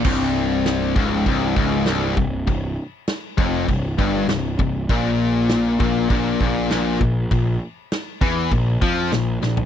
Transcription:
<<
  \new Staff \with { instrumentName = "Distorted electric guitar" } { \clef bass \time 4/4 \tempo 4 = 99 c,4. des,8 c,8 des,8 c,8 c,8 | c,8 r4 f,8 c,8 g,8 c,8 c,8 | bes,4. bes,8 bes,8 bes,8 bes,8 bes,8 | bes,8 r4 e8 bes,8 f8 bes,8 bes,8 | }
  \new Staff \with { instrumentName = "Distorted electric guitar" } { \clef bass \time 4/4 c,4. des,8 c,8 des,8 c,8 c,8 | c,8 r4 f,8 c,8 g,8 c,8 c,8 | bes,4. bes,8 bes,8 bes,8 bes,8 bes,8 | bes,8 r4 e8 bes,8 f8 bes,8 bes,8 | }
  \new Staff \with { instrumentName = "Picked electric bass" } { \clef bass \time 4/4 c,,4. des,,8 c,,8 des,,8 c,,8 c,,8 | c,,8 r4 f,,8 c,,8 g,,8 c,,8 c,,8 | bes,,4. bes,,8 bes,,8 bes,,8 bes,,8 bes,,8 | bes,,8 r4 e,8 bes,,8 f,8 bes,,8 bes,,8 | }
  \new DrumStaff \with { instrumentName = "Drums" } \drummode { \time 4/4 <cymc bd>4 <cymc sn>8 bd8 <cymc bd>8 bd8 <cymc sn>8 bd8 | <cymc bd>4 <cymc sn>8 bd8 <cymc bd>8 bd8 <cymc sn>8 bd8 | <cymc bd>4 <cymc sn>8 bd8 <cymc bd>8 bd8 <cymc sn>8 bd8 | <cymc bd>4 <cymc sn>8 bd8 <cymc bd>8 bd8 <cymc sn>8 sn16 tomfh16 | }
>>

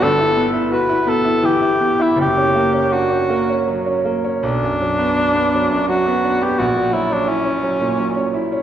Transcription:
<<
  \new Staff \with { instrumentName = "Cor anglais" } { \time 3/4 \key b \minor \tempo 4 = 84 a'8. r16 b'8 a'8 g'8. e'16 | g'4 fis'4 r4 | d'2 fis'8. g'16 | fis'8 e'16 d'16 cis'4. r8 | }
  \new Staff \with { instrumentName = "Grand piano" } { \time 3/4 \key b \minor <g,, g,>16 e'16 b16 e'16 fis'16 e'16 b16 e'16 e16 e'16 b16 e'16 | <fis,, fis,>16 cis'16 ais16 cis'16 d'16 cis'16 ais16 cis'16 fis16 cis'16 ais16 cis'16 | b,,16 fis,16 fis16 b16 d'16 b16 fis16 fis,16 fis16 b16 d'16 b16 | ais,,16 ais,16 fis16 cis'16 e'16 cis'16 fis16 ais,16 fis16 cis'16 e'16 cis'16 | }
>>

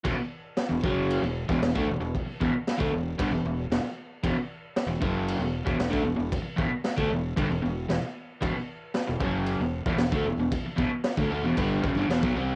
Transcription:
<<
  \new Staff \with { instrumentName = "Overdriven electric guitar" } { \clef bass \time 4/4 \key e \minor \tempo 4 = 115 <e, b,>16 r4 <e, b,>16 <fis, cis fis>8. <e, b,>8 <e, b,>16 <e, b,>16 <d a>16 <e, b,>16 <e, b,>16~ | <e, b,>16 r16 <e, b,>16 r8 <d a>16 <e, b,>8 <g, d>16 <e, b,>16 <e, b,>8 <e, b,>16 r8. | <e, b,>16 r4 <e, b,>16 <fis, cis fis>8. <e, b,>8 <e, b,>16 <e, b,>16 <d a>16 <e, b,>16 <e, b,>16~ | <e, b,>16 r16 <e, b,>16 r8 <d a>16 <e, b,>8 <g, d>16 <e, b,>16 <e, b,>8 <e, b,>16 r8. |
<e, b,>16 r4 <e, b,>16 <fis, cis fis>8. <e, b,>8 <e, b,>16 <e, b,>16 <d a>16 <e, b,>16 <e, b,>16~ | <e, b,>16 r16 <e, b,>16 r8 <d a>16 <d a>16 <e, b,>16 <g, d g>8 <fis, cis>16 <g, d>16 <e, b,>16 <b, fis>16 <c g c'>8 | }
  \new Staff \with { instrumentName = "Fingered electric bass" } { \clef bass \time 4/4 \key e \minor e,,16 r4 e,,16 fis,,8. e,,8 e,,16 e,,16 d,16 e,,16 e,,16~ | e,,16 r16 e,,16 r8 d,16 e,,8 g,,16 e,,16 e,,8 e,,16 r8. | e,,16 r4 e,,16 fis,,8. e,,8 e,,16 e,,16 d,16 e,,16 e,,16~ | e,,16 r16 e,,16 r8 d,16 e,,8 g,,16 e,,16 e,,8 e,,16 r8. |
e,,16 r4 e,,16 fis,,8. e,,8 e,,16 e,,16 d,16 e,,16 e,,16~ | e,,16 r16 e,,16 r8 d,16 d,16 e,,16 g,,8 fis,,16 g,,16 e,,16 b,,16 c,8 | }
  \new DrumStaff \with { instrumentName = "Drums" } \drummode { \time 4/4 <cymc bd>4 <cymc sn>8 bd8 cymc8. bd16 <cymc sn>16 bd8. | <cymc bd>8 bd8 <cymc sn>16 bd8. <cymc bd>4 <cymc sn>4 | <cymc bd>4 <cymc sn>8 bd8 cymc8. bd16 <cymc sn>16 bd8. | <cymc bd>8 bd8 <cymc sn>16 bd8. <cymc bd>4 <cymc sn>4 |
<cymc bd>4 <cymc sn>8 bd8 cymc8. bd16 <cymc sn>16 bd8. | <cymc bd>8 bd8 <cymc sn>16 bd8. <cymc bd>8 bd8 <cymc sn>16 bd8. | }
>>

